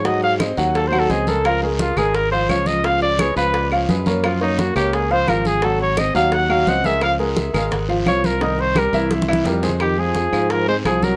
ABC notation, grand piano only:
X:1
M:4/4
L:1/8
Q:1/4=172
K:Db
V:1 name="Grand piano"
[G,Gg]2 [Cce] [G,Gg]2 [G,Gg] [Cce] [A,AB] | [F,Ff] [A,AB]2 [A,AB]2 [F,Ff] [F,Ff]2 | [F,Ff]2 [A,A_c] [F,Ff]2 [F,Ff] [A,Ac] [B,Bd] | [F,Ff] [B,Bd]2 [B,Bd]2 [F,Ff] [F,Ff]2 |
[G,Gg]2 [Cce] [G,Gg]2 [G,Gg] [Cce] [A,AB] | [F,Ff] [A,AB]2 [A,AB]2 [F,Ff] [F,Ff]2 | [E,Ee]2 [=G,=GB] [=E,=E=e]2 [E,Ee] [G,GB] [A,Ac] | [K:Fm] z [A,A]2 [F,F]2 [Cc]2 [_G,_G] |]